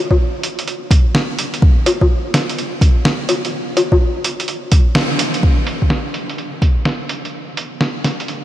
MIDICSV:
0, 0, Header, 1, 2, 480
1, 0, Start_track
1, 0, Tempo, 476190
1, 1635, Time_signature, 4, 2, 24, 8
1, 8512, End_track
2, 0, Start_track
2, 0, Title_t, "Drums"
2, 107, Note_on_c, 9, 36, 60
2, 111, Note_on_c, 9, 77, 52
2, 208, Note_off_c, 9, 36, 0
2, 212, Note_off_c, 9, 77, 0
2, 438, Note_on_c, 9, 42, 55
2, 539, Note_off_c, 9, 42, 0
2, 592, Note_on_c, 9, 42, 31
2, 681, Note_off_c, 9, 42, 0
2, 681, Note_on_c, 9, 42, 30
2, 782, Note_off_c, 9, 42, 0
2, 914, Note_on_c, 9, 36, 101
2, 919, Note_on_c, 9, 42, 54
2, 1015, Note_off_c, 9, 36, 0
2, 1020, Note_off_c, 9, 42, 0
2, 1156, Note_on_c, 9, 38, 106
2, 1257, Note_off_c, 9, 38, 0
2, 1397, Note_on_c, 9, 42, 54
2, 1497, Note_off_c, 9, 42, 0
2, 1549, Note_on_c, 9, 42, 30
2, 1636, Note_on_c, 9, 36, 117
2, 1650, Note_off_c, 9, 42, 0
2, 1737, Note_off_c, 9, 36, 0
2, 1878, Note_on_c, 9, 42, 55
2, 1878, Note_on_c, 9, 77, 70
2, 1979, Note_off_c, 9, 42, 0
2, 1979, Note_off_c, 9, 77, 0
2, 2030, Note_on_c, 9, 36, 57
2, 2030, Note_on_c, 9, 77, 53
2, 2131, Note_off_c, 9, 36, 0
2, 2131, Note_off_c, 9, 77, 0
2, 2359, Note_on_c, 9, 38, 104
2, 2359, Note_on_c, 9, 42, 54
2, 2460, Note_off_c, 9, 38, 0
2, 2460, Note_off_c, 9, 42, 0
2, 2515, Note_on_c, 9, 42, 31
2, 2605, Note_off_c, 9, 42, 0
2, 2605, Note_on_c, 9, 42, 32
2, 2706, Note_off_c, 9, 42, 0
2, 2836, Note_on_c, 9, 36, 100
2, 2840, Note_on_c, 9, 42, 56
2, 2937, Note_off_c, 9, 36, 0
2, 2941, Note_off_c, 9, 42, 0
2, 3076, Note_on_c, 9, 38, 106
2, 3177, Note_off_c, 9, 38, 0
2, 3314, Note_on_c, 9, 42, 57
2, 3314, Note_on_c, 9, 77, 65
2, 3415, Note_off_c, 9, 42, 0
2, 3415, Note_off_c, 9, 77, 0
2, 3475, Note_on_c, 9, 42, 31
2, 3576, Note_off_c, 9, 42, 0
2, 3798, Note_on_c, 9, 42, 59
2, 3798, Note_on_c, 9, 77, 72
2, 3899, Note_off_c, 9, 42, 0
2, 3899, Note_off_c, 9, 77, 0
2, 3951, Note_on_c, 9, 36, 60
2, 3953, Note_on_c, 9, 77, 54
2, 4052, Note_off_c, 9, 36, 0
2, 4054, Note_off_c, 9, 77, 0
2, 4279, Note_on_c, 9, 42, 59
2, 4379, Note_off_c, 9, 42, 0
2, 4434, Note_on_c, 9, 42, 33
2, 4515, Note_off_c, 9, 42, 0
2, 4515, Note_on_c, 9, 42, 33
2, 4616, Note_off_c, 9, 42, 0
2, 4754, Note_on_c, 9, 42, 56
2, 4756, Note_on_c, 9, 36, 100
2, 4854, Note_off_c, 9, 42, 0
2, 4857, Note_off_c, 9, 36, 0
2, 4990, Note_on_c, 9, 38, 106
2, 5091, Note_off_c, 9, 38, 0
2, 5233, Note_on_c, 9, 42, 60
2, 5334, Note_off_c, 9, 42, 0
2, 5385, Note_on_c, 9, 42, 33
2, 5475, Note_on_c, 9, 36, 102
2, 5485, Note_off_c, 9, 42, 0
2, 5576, Note_off_c, 9, 36, 0
2, 5712, Note_on_c, 9, 42, 49
2, 5813, Note_off_c, 9, 42, 0
2, 5867, Note_on_c, 9, 36, 52
2, 5949, Note_on_c, 9, 38, 88
2, 5968, Note_off_c, 9, 36, 0
2, 6049, Note_off_c, 9, 38, 0
2, 6190, Note_on_c, 9, 42, 50
2, 6291, Note_off_c, 9, 42, 0
2, 6345, Note_on_c, 9, 42, 29
2, 6434, Note_off_c, 9, 42, 0
2, 6434, Note_on_c, 9, 42, 28
2, 6535, Note_off_c, 9, 42, 0
2, 6671, Note_on_c, 9, 36, 91
2, 6674, Note_on_c, 9, 42, 50
2, 6772, Note_off_c, 9, 36, 0
2, 6775, Note_off_c, 9, 42, 0
2, 6909, Note_on_c, 9, 38, 94
2, 7010, Note_off_c, 9, 38, 0
2, 7150, Note_on_c, 9, 42, 50
2, 7251, Note_off_c, 9, 42, 0
2, 7309, Note_on_c, 9, 42, 29
2, 7409, Note_off_c, 9, 42, 0
2, 7633, Note_on_c, 9, 42, 50
2, 7734, Note_off_c, 9, 42, 0
2, 7869, Note_on_c, 9, 38, 94
2, 7970, Note_off_c, 9, 38, 0
2, 8109, Note_on_c, 9, 38, 55
2, 8109, Note_on_c, 9, 42, 52
2, 8210, Note_off_c, 9, 38, 0
2, 8210, Note_off_c, 9, 42, 0
2, 8266, Note_on_c, 9, 42, 29
2, 8349, Note_off_c, 9, 42, 0
2, 8349, Note_on_c, 9, 42, 30
2, 8450, Note_off_c, 9, 42, 0
2, 8512, End_track
0, 0, End_of_file